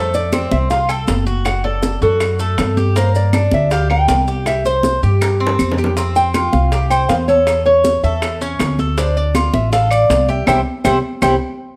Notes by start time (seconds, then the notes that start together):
Already playing: F2 A3 C5
0.14 D5, high conga, maracas
0.33 C4, high bongo, high conga, claves, maracas
0.51 C2 E5, high conga, maracas
0.70 F4 F5, high bongo, high conga, maracas
0.89 A4 G5, high conga, claves, maracas
1.08 F#1, high bongo, low bongo, high conga, maracas
1.26 F#4, high conga, maracas
1.45 F#5, high bongo, claves, maracas
1.64 A4 D5, high bongo, high conga
1.83 high bongo, high conga, maracas
2.02 F#2 F#4 A4, high conga, maracas
2.20 high bongo, high conga, claves, maracas
2.39 A3, high bongo, high conga, maracas
2.58 G2, high bongo, low bongo, high conga, claves, maracas
2.77 G4, high bongo, high conga, maracas
2.96 A#3 C5, high bongo, high conga, maracas
3.14 D5, high conga, maracas
3.33 D4, high bongo, high conga, claves, maracas
3.51 D2 E5, high conga, maracas
3.71 G4 F5, high bongo, maracas
3.90 A#4 G5, high conga, claves
4.08 C2, high bongo, low bongo, high conga, maracas
4.28 G4, maracas
4.36 F5
4.46 E5, high bongo, high conga, claves, maracas
4.65 C5, high bongo, high conga, maracas
4.83 high bongo, high conga, maracas
5.03 G2 G4, high conga, maracas
5.21 high bongo, high conga, claves, maracas
5.40 C4, high conga
5.47 low bongo
5.59 F2, high conga, claves, maracas
5.72 low bongo
5.78 G4, high conga, maracas
5.84 low bongo
5.97 C4, high bongo, high conga, maracas
6.16 G5, high conga, maracas
6.34 F4, high bongo, high conga, claves, maracas
6.53 C2 F5, high conga, maracas
6.72 G4, high bongo, high conga, maracas
6.90 C5 G5, high conga, claves, maracas
7.09 E2 F5, high bongo, low bongo, high conga, maracas
7.28 A4 C#5, high conga, maracas
7.47 high bongo, high conga, claves, maracas
7.66 C#5, high bongo, high conga
7.84 high bongo, high conga, maracas
8.03 E2 A4 E5, high conga, maracas
8.22 high bongo, high conga, claves, maracas
8.41 C#4, high bongo, high conga, maracas
8.59 D2, high bongo, low bongo, high conga, claves, maracas
8.79 A4, high bongo, high conga, maracas
8.97 D4 C5, high bongo, high conga, maracas
9.16 D5, high conga
9.35 F4, high bongo, high conga, claves, maracas
9.54 A1 E5, high conga, maracas
9.72 A4 F5, high bongo, high conga, maracas
9.91 D5, high conga, claves, maracas
10.09 C2, high bongo, low bongo, high conga, maracas
10.28 G4 E5, high conga, maracas
10.47 C2 E4 G4 C5 E5 G5, low bongo, high conga, claves, maracas
10.84 C2 E4 G4 C5 E5 G5, low bongo, high conga, claves, maracas
11.22 C2 E4 G4 C5 E5 G5, low bongo, high conga, claves, maracas